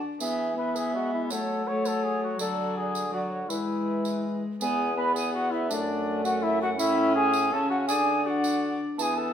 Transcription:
0.20 bassoon E3, viola B3, cornet G#4, recorder E5, tambourine
0.56 viola B3, cornet B4, recorder E5
0.76 cornet G#4, tambourine
0.94 bassoon G#3, cornet F#4
1.13 cornet E4
1.30 bassoon F#3, viola A3, cornet A4, recorder C#5, tambourine
1.65 viola A3, recorder C#5, cornet C#5
1.85 cornet A4, tambourine
2.04 cornet G#4
2.23 cornet F#4
2.39 bassoon D3, viola F#3, cornet A4, recorder D5, tambourine
2.77 cornet G#4
2.95 tambourine
3.13 viola F#3, cornet F#4, recorder D5
3.30 recorder C#5
3.49 bassoon E3, viola G#3, cornet E4, recorder B4, tambourine
4.05 tambourine
4.61 bassoon E2, viola B3, cornet G#4, recorder G#5, tambourine
4.97 viola B3, cornet B4, recorder B5
5.15 cornet G#4, recorder G#5, tambourine
5.34 cornet F#4, recorder F#5
5.51 cornet E4, recorder E5
5.69 bassoon F#2, viola A3, cornet D4, recorder E5, tambourine
5.74 recorder D5
6.25 cornet F#4, recorder F#5, tambourine
6.43 cornet E4, recorder E5
6.62 cornet F#4, recorder F#5
6.79 bassoon A2, viola C#4, cornet E4, recorder E5, tambourine
7.15 cornet G#4, recorder G#5
7.34 tambourine
7.53 bassoon C#3, viola C#4, cornet A4, recorder A5
7.70 cornet F#4, recorder F#5
7.88 bassoon D3, viola D4, cornet G#4, recorder G#5, tambourine
8.26 viola D4, cornet F#4, recorder F#5
8.44 tambourine
8.98 bassoon E3, viola B3, cornet G#4, recorder A5, tambourine
9.02 recorder G#5
9.17 cornet A4, recorder A5

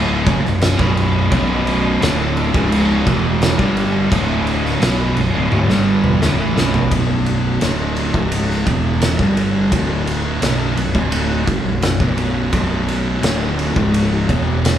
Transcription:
Already playing: fingered electric bass D1, distorted electric guitar D2 A2 D3
0.26 fingered electric bass F#1, distorted electric guitar F#2 C#3, kick, crash
0.44 fingered electric bass B0, distorted electric guitar B1 F#2, snare
0.61 snare, crash
0.78 fingered electric bass B0, distorted electric guitar B1 F#2 B2, kick
0.97 crash
1.31 fingered electric bass B0, distorted electric guitar B1 F#2 B2, kick, crash
1.67 crash
2.01 fingered electric bass D1, distorted electric guitar D2 A2 D3, snare, crash
2.37 crash
2.53 fingered electric bass C#1, distorted electric guitar C#2 G#2 C#3, kick
2.72 crash
3.06 fingered electric bass E1, distorted electric guitar E2 B2 E3, kick, crash
3.42 snare, crash
3.58 fingered electric bass G1, distorted electric guitar G2 D3 G3, kick
3.77 crash
4.11 fingered electric bass D1, distorted electric guitar D2 A2 D3, kick, crash
4.47 crash
4.65 snare
4.81 fingered electric bass B0, distorted electric guitar B1 F#2 B2, snare, crash
5.16 fingered electric bass B0, distorted electric guitar B1 F#2, crash
5.34 fingered electric bass D1, distorted electric guitar D2 A2
5.51 fingered electric bass D1, distorted electric guitar D2 A2, high tom
5.69 fingered electric bass G1, distorted electric guitar G2 D3 G3, snare
6.04 mid tom
6.22 fingered electric bass D1, distorted electric guitar D2 A2, snare
6.39 fingered electric bass A1, distorted electric guitar A2 E3
6.56 fingered electric bass B0, distorted electric guitar B1 F#2 B2, snare
6.74 floor tom
6.91 fingered electric bass B0, distorted electric guitar B1 F#2 B2, kick, ride
7.26 ride
7.61 fingered electric bass D1, distorted electric guitar D2 A2 D3, snare, ride
7.96 ride
8.13 fingered electric bass C#1, distorted electric guitar C#2 G#2 C#3, kick
8.32 ride
8.51 snare
8.66 fingered electric bass E1, distorted electric guitar E2 B2 E3, kick, ride
9.02 snare, ride
9.19 fingered electric bass G1, distorted electric guitar G2 D3 G3, kick
9.37 ride
9.72 fingered electric bass D1, distorted electric guitar D2 A2 D3, kick, ride
10.07 ride
10.41 fingered electric bass B0, distorted electric guitar B1 F#2 B2, snare, ride
10.77 fingered electric bass B0, distorted electric guitar B1 F#2, ride
10.94 fingered electric bass D1, distorted electric guitar D2 A2 D3, kick
11.12 ride
11.46 fingered electric bass F#1, distorted electric guitar F#2 C#3, kick, ride
11.64 fingered electric bass B0, distorted electric guitar B1 F#2
11.82 snare, ride
11.99 fingered electric bass B0, distorted electric guitar B1 F#2 B2, kick
12.18 ride
12.52 fingered electric bass B0, distorted electric guitar B1 F#2 B2, kick, ride
12.88 ride
13.22 fingered electric bass D1, distorted electric guitar D2 A2 D3, snare, ride
13.59 ride
13.75 fingered electric bass C#1, distorted electric guitar C#2 G#2 C#3, kick
13.94 ride
14.28 fingered electric bass E1, distorted electric guitar E2 B2 E3, kick, ride
14.65 snare, ride

